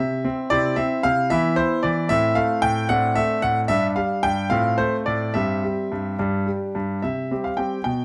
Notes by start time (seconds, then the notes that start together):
Already playing: E4 E5
0.00 C3
0.25 C4
0.50 C3 C4 E4 D5
0.76 C4 E5
1.03 C3 F5
1.30 E3 B3 E4 E5
1.56 E4 C5
1.83 E3 D5
2.09 A2 C4 E4 E5
2.35 A3 F5
2.62 A2 G5
2.89 A2 C4 D4 F#5
3.16 A3 E5
3.42 A2 F#5
3.68 G2 D4 E5
3.96 G3 F5
4.23 G2 G5
4.50 A2 C4 F4 F5
4.78 A3 C5
5.06 A2 D5
5.34 G2 C4 G4 E5
5.64 G3
5.92 G2
6.19 G2 D4 G4
6.47 G3
6.75 G2
7.02 C3 E5
7.31 G3 C4 G4
7.44 F5
7.57 G3 C4 G4 G5
7.84 B2 G5